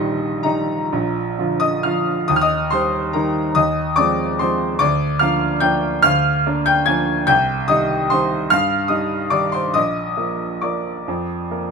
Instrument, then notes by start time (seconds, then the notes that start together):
upright piano
Already playing: A#1 A#2 D#3 G3 D#4 D#5 C6
0.43 D#3 G3 D#4 D#5 A#5
0.92 A#1 A#2
1.38 D3 F3 F4
1.60 D#5 D#6
1.83 D3 F3 F4 F5 F6
2.28 D#2 D#6
2.36 F6
2.41 D#5 D#6
2.71 D#3 G3 D#4 C5 C6
3.13 D#3 G3 D#4 A#4 A#5
3.55 D#2 D#5 D#6
3.96 F3 G#3 C4 D5 D6
4.39 F3 G#3 C4 C5 C6
4.79 D2 D5 D6
5.19 F3 A#3 D4 F5 F6
5.60 F3 A#3 D4 G5 G6
6.02 D2 F5 F6
6.46 A#3 D4
6.66 G5 G6
6.86 F3 A#3 D4 G#5 G#6
7.27 C2 G5 G6
7.68 D#3 G3 D#4 D#5 D#6
8.10 D#3 G3 D#4 C5 C6
8.50 G2 F5 F6
8.88 G3 D#4 D#5 D#6
9.30 D#3 G3 D#4 D5 D6
9.52 C5 C6
9.74 A#1 D#5 D#6
10.17 F3 A#3 A#4
10.61 F3 A#3 A#4 D5 D6
11.08 F2
11.51 A#3 A#4